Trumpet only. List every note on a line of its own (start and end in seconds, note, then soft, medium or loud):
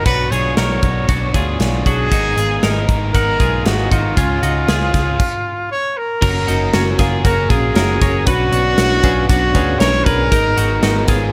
0.05 0.32 B4 loud
0.31 0.56 C#5 loud
0.57 1.30 C#5 medium
1.86 2.85 G#4 loud
3.13 3.67 A#4 loud
3.65 3.93 F#4 medium
3.91 5.71 F4 medium
5.72 5.98 C#5 loud
5.97 6.99 A#4 medium
7.24 7.51 A#4 loud
7.49 8.28 G#4 medium
8.26 9.28 F#4 loud
9.28 9.81 F#4 loud
9.79 10.06 C#5 loud
10.04 11.07 A#4 loud